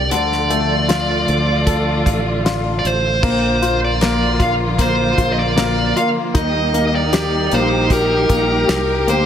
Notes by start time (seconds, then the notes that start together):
Already playing: G3 D4
0.11 D2 D3 F3 A3 F4 D5, closed hi-hat
0.32 snare
0.50 A3, closed hi-hat
0.88 F4, snare, closed hi-hat
1.28 D2, closed hi-hat
1.67 A4, kick, closed hi-hat
2.06 A1, kick, closed hi-hat
2.45 F4, snare, closed hi-hat
2.79 D5
2.85 A1 C5, closed hi-hat
3.22 A#1 D3 F3 A#3 F4, kick, crash
3.62 F4, closed hi-hat
3.84 D5
4.01 A#3, snare, closed hi-hat
4.39 A#1 F4 F5, kick, closed hi-hat
4.78 A#3 C5, kick, closed hi-hat
5.18 A#1 F4, kick, closed hi-hat
5.32 D#5
5.39 D5
5.56 A#3, snare, closed hi-hat
5.96 F4 F5, closed hi-hat
6.34 D#2 G3 D#4 G4 D#5, kick, closed hi-hat
6.74 A#3, closed hi-hat
6.87 D#5
6.95 D5
7.13 G4, snare, closed hi-hat
7.52 A#1 A#3 C5, closed hi-hat
7.90 G4 A#4, kick, closed hi-hat
8.29 A#1 A#3, kick, closed hi-hat
8.68 C2 G4, snare, closed hi-hat
9.07 D2 A#3 C5, closed hi-hat